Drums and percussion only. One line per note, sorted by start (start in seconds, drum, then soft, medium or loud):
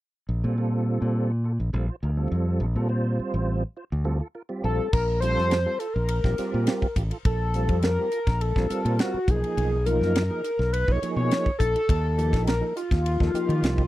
4.93 kick loud
4.93 crash medium
5.22 hi-hat pedal medium
5.22 ride medium
5.38 snare soft
5.51 snare medium
5.51 ride medium
5.80 hi-hat pedal medium
5.80 ride medium
6.09 ride medium
6.24 kick medium
6.24 snare soft
6.38 snare soft
6.38 hi-hat pedal medium
6.38 ride medium
6.67 snare loud
6.67 ride medium
6.82 kick medium
6.96 kick medium
6.96 hi-hat pedal medium
6.96 ride medium
7.11 ride medium
7.25 kick loud
7.25 ride medium
7.54 hi-hat pedal medium
7.54 ride medium
7.69 kick medium
7.69 ride medium
7.82 snare loud
7.82 ride medium
8.12 hi-hat pedal medium
8.12 ride medium
8.27 kick medium
8.27 snare soft
8.27 ride medium
8.41 ride medium
8.56 kick medium
8.56 snare soft
8.70 hi-hat pedal medium
8.70 ride medium
8.86 ride medium
8.99 snare loud
8.99 ride medium
9.28 kick loud
9.28 hi-hat pedal medium
9.28 ride medium
9.44 ride medium
9.58 ride medium
9.86 hi-hat pedal medium
9.86 ride medium
10.02 snare soft
10.15 snare loud
10.15 ride medium
10.44 hi-hat pedal medium
10.44 ride medium
10.61 snare soft
10.74 ride medium
10.88 kick medium
11.03 hi-hat pedal medium
11.03 ride medium
11.31 snare loud
11.31 ride medium
11.46 kick medium
11.60 kick medium
11.60 hi-hat pedal medium
11.60 ride medium
11.76 ride medium
11.89 kick medium
11.89 ride medium
12.19 hi-hat pedal medium
12.19 ride medium
12.33 kick medium
12.33 snare soft
12.33 ride medium
12.47 snare loud
12.47 ride medium
12.77 hi-hat pedal medium
12.77 ride medium
12.91 kick medium
12.91 snare soft
12.91 ride medium
13.06 ride medium
13.20 kick medium
13.20 snare soft
13.35 hi-hat pedal medium
13.35 ride soft
13.50 ride medium
13.64 snare loud
13.64 ride medium
13.78 kick medium